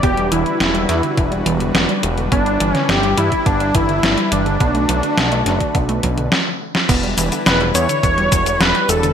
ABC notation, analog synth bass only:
X:1
M:4/4
L:1/8
Q:1/4=105
K:Edor
V:1 name="Analog synth bass" clef=bass
E,,, E,,, E,,, E,, E,,, E,,, E,,, E,,, | G,,, G,,, G,,, G,, G,,, G,,, G,,, G,,, | B,,, B,,, B,,, F,,, B,,, B,,, z2 | E,,, E,,, E,,, E,, E,,, E,,, E,,, E,,, |]